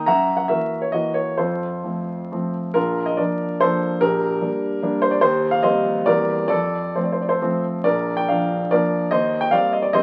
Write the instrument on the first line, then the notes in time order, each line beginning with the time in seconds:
grand piano
0.06 F#2 E5 F#5 A#5
0.37 F#5
0.48 E3 A#3 F#4 A#4 E5
0.82 C#5
0.92 E3 A#3 F#4 D#5
1.14 C#5
1.38 F2 F4 A4 C5
1.84 F3 A3 C4
2.32 F3 A3 C4
2.74 A#1 F4 A#4
3.06 D#5
3.17 F3 A#3 D4 A#4 D5
3.61 F3 A#3 D4 A4 C5
4.01 A#1 G4 A#4
4.41 G3 A#3 D4
4.83 G3 A#3 D4
5.02 C5
5.11 D5
5.21 D#2 G4 C5
5.51 F5
5.63 G3 A#3 C4 C5 D#5
6.06 E2 G3 A#3 C4 A#4 D5
6.48 F2 A4 D5
6.96 F3 A3 C4 C5
7.04 D5
7.12 C5
7.21 D5
7.29 A4 C5
7.41 F3 A3 C4
7.84 A#1 A#4 D5
8.17 G5
8.28 F3 A#3 D4 D5 F5
8.71 F3 A#3 D4 A#4 D5
9.11 D#2 C5 D#5
9.41 G5
9.51 G3 A#3 C4 D5 F5
9.73 D#5
9.82 D5
9.93 G3 A#3 C4 C5 D#5